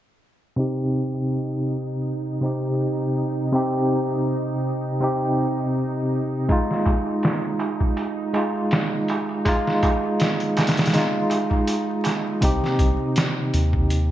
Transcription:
0.56 2.38 C3 medium
0.56 2.39 C4 medium
0.56 12.44 D#4 medium
0.56 2.39 D#4 medium
0.56 2.40 G4 medium
2.41 3.49 C3 medium
2.41 3.50 C4 medium
2.41 3.50 D#4 medium
2.45 3.51 G4 medium
3.52 4.97 C3 medium
3.52 4.98 C4 medium
3.52 4.98 D#4 medium
3.52 4.99 G4 medium
5.00 6.45 C3 medium
5.00 6.46 C4 medium
5.00 6.46 D#4 medium
5.00 6.47 G4 medium
6.49 8.30 G#3 medium
6.49 8.31 D#4 medium
6.49 8.32 F4 medium
6.49 kick loud
6.49 closed hi-hat medium
6.49 darbuka tek medium
6.70 snare soft
6.70 darbuka tek soft
6.85 kick medium
6.85 closed hi-hat medium
6.85 darbuka tek medium
7.06 darbuka tek soft
7.23 snare medium
7.23 closed hi-hat medium
7.23 darbuka tek soft
7.43 darbuka tek soft
7.59 closed hi-hat medium
7.59 darbuka tek medium
7.80 kick medium
7.80 darbuka tek soft
7.97 closed hi-hat medium
7.97 darbuka tek medium
8.18 darbuka tek soft
8.34 9.41 G#3 medium
8.34 9.42 D#4 medium
8.34 9.43 F4 medium
8.34 closed hi-hat medium
8.34 darbuka tek medium
8.56 darbuka tek soft
8.71 snare loud
8.71 closed hi-hat medium
8.71 darbuka tek soft
8.92 darbuka tek soft
9.08 closed hi-hat medium
9.08 darbuka tek medium
9.29 darbuka tek soft
9.45 10.90 G#3 medium
9.45 10.91 D#4 medium
9.45 10.91 F4 loud
9.45 kick medium
9.45 closed hi-hat medium
9.45 darbuka tek medium
9.65 snare soft
9.65 darbuka tek soft
9.83 kick medium
9.83 closed hi-hat medium
9.83 darbuka tek medium
10.04 darbuka tek soft
10.20 snare loud
10.20 closed hi-hat medium
10.20 darbuka tek medium
10.40 closed hi-hat soft
10.40 darbuka tek soft
10.57 snare medium
10.57 closed hi-hat medium
10.57 darbuka tek medium
10.67 snare medium
10.67 closed hi-hat medium
10.76 snare medium
10.76 closed hi-hat medium
10.76 darbuka tek soft
10.86 snare medium
10.86 closed hi-hat medium
10.93 12.38 G#3 medium
10.93 12.39 D#4 medium
10.93 snare medium
10.93 closed hi-hat medium
10.93 darbuka tek soft
10.97 12.40 F4 medium
11.14 darbuka tek soft
11.30 closed hi-hat medium
11.30 darbuka tek medium
11.50 kick medium
11.50 darbuka tek soft
11.67 closed hi-hat medium
11.67 darbuka tek medium
11.88 darbuka tek soft
12.04 snare soft
12.04 closed hi-hat medium
12.04 darbuka tek medium
12.24 darbuka tek soft
12.41 12.60 C2 loud
12.41 14.11 C3 medium
12.41 14.11 C4 medium
12.41 14.11 D#4 medium
12.41 14.11 G4 medium
12.41 kick loud
12.41 closed hi-hat medium
12.64 snare soft
12.79 12.97 C2 medium
12.79 kick medium
12.79 closed hi-hat medium
13.16 snare loud
13.16 closed hi-hat medium
13.54 14.11 D#2 medium
13.54 closed hi-hat medium
13.73 kick medium
13.90 closed hi-hat medium

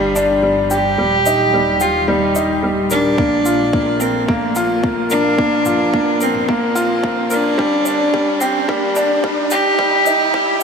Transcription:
0.00 0.96 G1 medium
0.00 0.43 G3 medium
0.00 0.16 D4 medium
0.00 0.44 D4 medium
0.00 0.71 G4 medium
0.00 riser medium
0.16 0.42 D4 loud
0.16 shaker medium
0.43 0.59 G3 medium
0.71 0.97 G4 medium
0.71 1.83 G4 loud
0.71 shaker medium
0.98 3.16 D#1 medium
0.98 1.14 G3 medium
1.26 1.52 D#4 medium
1.26 shaker medium
1.53 1.80 G3 medium
1.80 2.10 F4 medium
1.80 2.07 G4 medium
1.80 shaker medium
2.08 2.24 G3 medium
2.08 2.64 D#4 medium
2.35 2.62 D#4 medium
2.35 shaker medium
2.63 2.90 G3 medium
2.90 4.01 D4 loud
2.90 3.07 A#4 medium
2.90 shaker medium
3.18 7.56 A#1 medium
3.18 3.34 A#3 medium
3.18 kick loud
3.46 3.72 F4 medium
3.46 shaker medium
3.73 3.99 A#3 medium
3.73 kick loud
4.00 4.29 C4 medium
4.00 4.27 A#4 medium
4.00 shaker medium
4.27 4.83 A#3 medium
4.27 4.44 A#3 medium
4.27 kick loud
4.55 4.83 F4 loud
4.55 shaker medium
4.83 4.99 A#3 medium
4.83 kick loud
5.10 6.24 D4 loud
5.10 5.37 A#4 medium
5.10 shaker medium
5.38 5.54 A#3 medium
5.38 kick medium
5.65 5.92 F4 medium
5.65 mid tom medium
5.65 shaker medium
5.93 6.20 A#3 medium
5.93 kick medium
6.20 6.53 C4 medium
6.20 6.47 A#4 medium
6.20 shaker medium
6.35 mid tom medium
6.48 6.65 A#3 loud
6.48 7.05 A#3 medium
6.48 kick loud
6.75 7.02 F4 loud
6.75 shaker medium
7.03 7.19 A#3 medium
7.03 kick loud
7.30 8.42 D4 loud
7.30 7.57 A#4 medium
7.30 shaker medium
7.58 9.77 G1 medium
7.58 7.74 G3 medium
7.58 kick medium
7.86 8.12 D4 medium
7.86 shaker medium
8.13 8.40 G3 medium
8.13 kick medium
8.40 8.71 C4 medium
8.40 8.68 G4 medium
8.40 shaker medium
8.68 8.85 G3 loud
8.68 9.25 A#3 medium
8.68 kick loud
8.96 9.23 D4 loud
8.96 shaker medium
9.24 9.40 G3 medium
9.24 kick loud
9.51 10.63 G4 loud
9.51 9.78 G4 medium
9.51 shaker medium
9.79 10.63 D#1 medium
9.79 9.95 G3 medium
9.79 kick loud
10.06 10.33 D#4 medium
10.06 mid tom medium
10.06 shaker medium
10.34 10.61 G3 medium
10.34 kick loud

